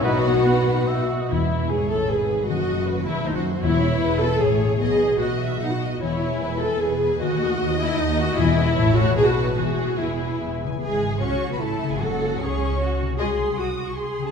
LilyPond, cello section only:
\new Staff \with { instrumentName = "Cello section" } { \clef bass \time 3/4 \key e \major \tempo 4 = 152 b,2~ b,8 r8 | e,4 gis,8 a,8 gis,4 | fis,4. e,8 dis,16 fis,8. | e,4 e,4 a,4 |
b,4 b,4 b,4 | e,4 e,4 e,4 | dis,4 dis,4 dis,4 | e,4 a,4 b,4 |
e,4 e,4 e,4 | \key cis \minor gis'4 fis'4 e'4 | a'4 gis'4 fis'4 | gis'4 fis'4 gis'4 | }